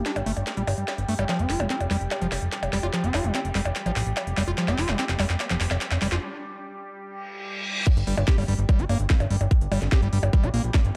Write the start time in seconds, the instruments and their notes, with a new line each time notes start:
Already playing: synth drone G3 G4
0.06 acid bass D4, snare, closed hi-hat
0.16 analog synth bass G1, closed hi-hat, percussion blips
0.26 analog synth bass G1, acid bass A3, open hi-hat
0.37 analog synth bass G1, closed hi-hat, percussion blips
0.47 snare, closed hi-hat
0.57 analog synth bass A#1, acid bass G3, closed hi-hat
0.67 analog synth bass G1, open hi-hat, percussion blips
0.78 analog synth bass G2, closed hi-hat
0.88 snare, closed hi-hat, percussion blips
0.98 analog synth bass G1, closed hi-hat
1.09 analog synth bass G2, acid bass A3, open hi-hat
1.19 analog synth bass G1, acid bass G3, closed hi-hat, percussion blips
1.29 acid bass F3, snare, closed hi-hat, percussion blips, riser
1.39 analog synth bass F1, acid bass C4, closed hi-hat
1.50 analog synth bass F1, acid bass F4, snare, open hi-hat
1.60 analog synth bass F1, acid bass G3, percussion blips
1.70 acid bass C4, snare, closed hi-hat
1.80 analog synth bass F1, closed hi-hat, percussion blips
1.91 analog synth bass F1, acid bass G3, snare, open hi-hat
2.01 analog synth bass F1, closed hi-hat
2.11 snare, closed hi-hat, percussion blips
2.22 analog synth bass F1, acid bass F3, closed hi-hat
2.32 analog synth bass F1, snare, open hi-hat, percussion blips
2.42 analog synth bass F1, closed hi-hat
2.52 snare, closed hi-hat
2.63 analog synth bass F1, closed hi-hat, percussion blips
2.73 analog synth bass F1, acid bass G3, snare, open hi-hat
2.83 analog synth bass F1, acid bass F4, closed hi-hat, percussion blips
2.94 acid bass F3, snare, closed hi-hat
3.04 analog synth bass F1, acid bass C4, closed hi-hat
3.14 analog synth bass F1, acid bass F4, snare, open hi-hat, percussion blips
3.24 analog synth bass F1, acid bass G3, closed hi-hat
3.35 acid bass C4, snare, closed hi-hat, percussion blips
3.45 analog synth bass F1, closed hi-hat
3.55 analog synth bass F1, acid bass G3, snare, open hi-hat
3.65 analog synth bass F1, closed hi-hat, percussion blips
3.76 snare, closed hi-hat
3.86 analog synth bass A1, acid bass F3, closed hi-hat, percussion blips
3.96 analog synth bass A1, snare, open hi-hat
4.06 analog synth bass A1, closed hi-hat
4.17 snare, closed hi-hat, percussion blips
4.27 analog synth bass F1, closed hi-hat
4.37 analog synth bass F1, acid bass G3, snare, open hi-hat, percussion blips
4.48 analog synth bass F1, acid bass F4, closed hi-hat
4.58 acid bass F3, snare, closed hi-hat
4.68 analog synth bass F1, acid bass C4, snare, closed hi-hat, percussion blips
4.78 analog synth bass F1, acid bass F4, snare, open hi-hat
4.89 analog synth bass F1, acid bass G3, snare, closed hi-hat, percussion blips
4.99 acid bass C4, snare, closed hi-hat
5.09 analog synth bass F1, snare, closed hi-hat
5.19 analog synth bass F1, acid bass G3, snare, open hi-hat, percussion blips
5.30 analog synth bass F1, snare, closed hi-hat
5.40 snare, closed hi-hat, percussion blips
5.50 analog synth bass F1, acid bass F3, snare, closed hi-hat
5.61 analog synth bass F1, snare, open hi-hat
5.71 analog synth bass F1, snare, closed hi-hat, percussion blips
5.81 snare, closed hi-hat
5.91 analog synth bass F1, snare, closed hi-hat, percussion blips
6.02 analog synth bass F1, acid bass G3, snare, open hi-hat
6.12 analog synth bass F1, acid bass F4, snare, closed hi-hat
7.04 reverse cymbal
7.87 synth drone G3 G4, kick, closed hi-hat, crash, percussion blips
7.97 analog synth bass G1, closed hi-hat
8.07 analog synth bass G1, acid bass G3, open hi-hat
8.17 analog synth bass G1, closed hi-hat, percussion blips
8.28 acid bass G4, kick, snare, closed hi-hat
8.38 analog synth bass G1, acid bass G3, open hi-hat, percussion blips
8.48 analog synth bass G1, acid bass G3, open hi-hat
8.59 analog synth bass G1, closed hi-hat
8.69 acid bass G3, kick, closed hi-hat, percussion blips
8.79 analog synth bass G1, acid bass G4, closed hi-hat
8.89 analog synth bass G1, acid bass A#3, open hi-hat, percussion blips
9.00 analog synth bass G1, closed hi-hat
9.10 acid bass G3, kick, snare, closed hi-hat
9.20 analog synth bass G1, closed hi-hat, percussion blips
9.30 analog synth bass G1, acid bass G3, open hi-hat
9.41 analog synth bass G1, closed hi-hat, percussion blips
9.51 kick, closed hi-hat
9.61 analog synth bass G1, closed hi-hat
9.72 analog synth bass G1, acid bass G3, open hi-hat, percussion blips
9.82 analog synth bass G1, snare, closed hi-hat
9.92 acid bass G4, kick, snare, closed hi-hat, percussion blips
10.02 analog synth bass G1, acid bass G3, closed hi-hat
10.13 analog synth bass G1, acid bass G3, open hi-hat
10.23 analog synth bass G1, closed hi-hat, percussion blips
10.33 acid bass G3, kick, closed hi-hat
10.43 analog synth bass A#1, acid bass G4, closed hi-hat, percussion blips
10.54 analog synth bass A#1, acid bass A#3, open hi-hat
10.64 analog synth bass A#1, closed hi-hat
10.74 acid bass G3, kick, snare, closed hi-hat, percussion blips
10.85 analog synth bass G1, closed hi-hat